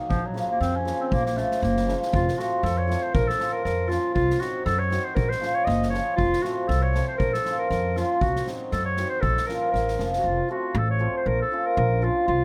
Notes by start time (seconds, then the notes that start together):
Already playing: D#3 F#3
0.09 A#1 F3, kick
0.25 F#3
0.34 C#3 F3 A#3 C#4, snare
0.51 A#3
0.60 F2 C4, snare
0.76 C#4
0.85 C#3 F3 A#3 C#4, snare
1.01 C4 C#4
1.06 C4
1.11 A#1 A#3, kick
1.26 A#3, snare
1.36 C#3 F3 A3 A#3 C#4, snare
1.51 snare
1.62 F#1 A#3, snare
1.77 snare
1.87 C#3 F3 A#3 C#4, snare
2.02 snare
2.13 F1 F4, kick
2.28 snare
2.37 F3 A3 C4 F4 F#4, snare
2.63 F2 A4, snare
2.77 C#5
2.87 F3 A3 C4 F4, snare
3.02 C5
3.14 A#1 A#4, kick
3.28 A4, snare
3.38 F3 A#3 C#4 F4, snare
3.52 A#4
3.64 F2 A#4, snare
3.88 F3 A#3 C#4 F4, snare
4.14 C2 F4, kick
4.30 snare
4.40 F#3 C4 D#4 F#4, snare
4.65 F#2 A4, snare
4.79 C#5
4.90 F#3 C4 D#4 F#4, snare
5.04 C5
5.15 A#1 A#4, kick
5.29 C5, snare
5.40 F3 A#3 C#4 F4, snare
5.54 C#5
5.65 F#1 D#5, snare
5.83 snare
5.90 F3 A#3 C#4 F4 C#5
5.94 snare
6.16 F1 F4, kick
6.33 snare
6.42 F3 A3 C4 F4 F#4, snare
6.68 C2 A4, snare
6.82 C#5
6.93 F3 A3 C4 F4, snare
7.08 C5
7.18 A#1 A#4, kick
7.33 A4, snare
7.45 F3 A#3 C#4 F4, snare
7.59 A#4
7.70 F2 A#4, snare
7.96 F3 A#3 C#4 F4, snare
8.21 C2 F#4, kick
8.36 snare
8.46 F#3 C4 D#4 F#4, snare
8.72 F#2 A4, snare
8.85 C#5
8.97 F#3 C4 D#4 F#4, snare
9.10 C5
9.21 A#1 A4, kick
9.37 snare
9.47 F3 A#3 C#4 F4 A#4, snare
9.60 A#4
9.71 A1 A#4, snare
9.88 snare
9.98 F1 F3 A#3 C#4 F4, snare
10.13 snare
10.17 F#4
10.24 F1 F4
10.49 F3 A3 C4 F4 F#4
10.75 A1 A4
10.91 C#5
10.99 F3 A3 C4 F4
11.17 C5
11.26 A#1 A#4
11.42 A4
11.52 F3 A#3 C#4 F4
11.66 A#4
11.77 A#1 A#4
12.02 F3 A#3 C#4 F4
12.28 C2 F4